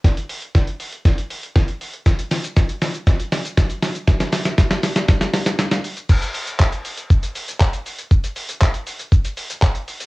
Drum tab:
CC |----------------|----------------|----------------|x---------------|
HH |xxoxxxoxxxoxxxox|xxoxxxoxxxoxxxox|xxoxxxo-xxoxxxox|-xox-xox-xox-xox|
SH |----------------|xxxxxxxxxxxxxxxx|xxxxxxxxxxxxxxxx|xxxxxxxxxxxxxxxx|
CP |----------------|----------------|----------------|----x-------x---|
SD |o---o---o---o---|o-o-o-o-o-o-o-o-|oooooooooooooo--|----------------|
BD |o---o---o---o---|o---o---o---o---|o---o---o-------|o---o---o---o---|

CC |----------------|
HH |-xox-xox-xox-xox|
SH |xxxxxxxxxxxxxxxx|
CP |----x-------x---|
SD |----------------|
BD |o---o---o---o---|